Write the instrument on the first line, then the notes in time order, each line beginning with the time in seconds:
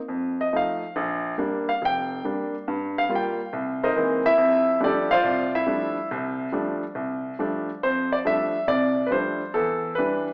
grand piano
0.08 F2
0.41 D#5
0.53 F3 A3 D#4 F5
0.96 A#1
1.38 G3 A#3 D4
1.69 F5
1.82 F1 G5
2.24 G3 A#3 D4
2.68 G2
2.98 F5
3.09 G3 A#3 F4
3.15 G5
3.53 C2
3.83 D#4 A#4 C5 D#5
3.96 E3 G#3 A#3 C4
4.26 E4 E5
4.38 F2
4.80 F3 G3 A3 D4 G4 D5
4.85 D4 A4
5.11 F4 C5 D5 F5
5.24 C2
5.55 E4 E5
5.66 F3 G3 A3 D4
6.11 C2 C3
6.52 F3 G3 A3 D4
6.95 C2
7.39 F3 G3 A3 D4
7.83 F2 C5
8.12 D5
8.25 F3 G3 A3 D4 E5
8.67 C2 C3 D5
9.06 B4
9.11 F3 G3 A3 D4 C5
9.54 E2 A4
9.95 E3 G3 D4 B4